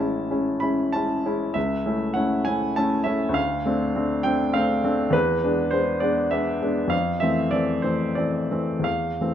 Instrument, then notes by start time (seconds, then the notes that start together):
grand piano
Already playing: A1 A5
0.00 G#3 C#4 E4
0.31 G#3 C#4 E4
0.60 G#3 C#4 E4 B5
0.93 G#3 C#4 E4 A5
1.25 G#3 C#4 E4
1.54 C#2 E5
1.86 A3 C#4 E4
2.14 A3 C#4 E4 F#5
2.45 A3 C#4 E4 G#5
2.76 A3 C#4 E4 A5
3.04 A3 C#4 E4 E5
3.29 D2
3.34 F5
3.66 A3 C4 D4
3.96 A3 C4 D4
4.23 A3 C4 D4 G5
4.54 A3 C4 D4 F5
4.84 A3 C4 D4
5.10 E2 B4
5.44 G#3 B3 D4
5.71 G#3 B3 D4 C5
6.00 G#3 B3 D4 D5
6.31 G#3 B3 D4 E5
6.62 G#3 B3 D4
6.88 F2 F5
7.20 E3 A3 C4 E5
7.51 E3 A3 C4 D5
7.82 E3 A3 C4 C5
8.15 E3 A3 C4 D5
8.51 E3 A3 C4
8.79 E2
8.84 F5
9.21 E3 A3 C4